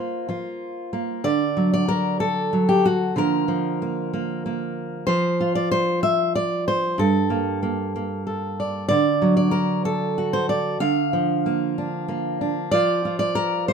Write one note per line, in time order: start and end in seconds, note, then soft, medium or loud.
0.00 0.92 A#3 soft
0.00 0.28 F4 soft
0.00 1.23 C5 medium
0.29 0.86 F3 medium
0.29 1.21 F4 soft
0.93 1.25 A#3 soft
1.24 3.12 D3 medium
1.24 1.72 D5 loud
1.57 2.52 F#3 medium
1.74 2.53 D5 medium
1.88 2.20 A#4 medium
2.20 3.16 A4 medium
2.53 3.12 F#3 soft
2.69 2.84 G4 medium
2.85 3.17 F#4 medium
3.16 5.03 D3 medium
3.16 3.48 F3 soft
3.16 3.81 A#3 soft
3.16 5.08 A#4 medium
3.48 5.07 F3 medium
3.82 4.12 A#3 soft
4.13 4.44 A#3 soft
4.46 5.08 A#3 soft
5.07 6.99 F3 medium
5.07 5.55 C5 loud
5.40 6.95 F4 medium
5.55 5.71 D5 medium
5.72 6.02 C5 medium
6.03 6.35 E5 loud
6.35 6.67 D5 medium
6.68 6.99 C5 medium
6.98 8.90 G2 medium
6.98 8.25 A4 medium
7.30 7.61 A#3 medium
7.63 7.94 A#3 soft
7.96 8.87 A#3 soft
8.27 8.86 A4 soft
8.60 8.88 D5 soft
8.88 10.78 D3 medium
8.88 9.35 D5 loud
9.22 10.78 F#3 medium
9.37 10.17 D5 medium
9.51 9.85 A#4 medium
9.85 10.81 A4 medium
10.18 10.78 F#4 soft
10.33 10.49 C5 medium
10.49 10.80 D5 medium
10.80 12.69 D3 medium
10.80 12.71 F5 loud
11.13 12.72 F3 medium
11.46 12.07 A#3 soft
11.78 12.41 D4 soft
12.08 12.73 A#3 soft
12.41 12.74 D4 soft
12.71 13.73 F3 medium
12.71 13.04 F4 medium
12.71 13.35 C5 medium
12.71 13.18 D5 loud
13.05 13.73 F4 medium
13.19 13.73 D5 medium
13.35 13.68 A#4 loud
13.68 13.73 C5 medium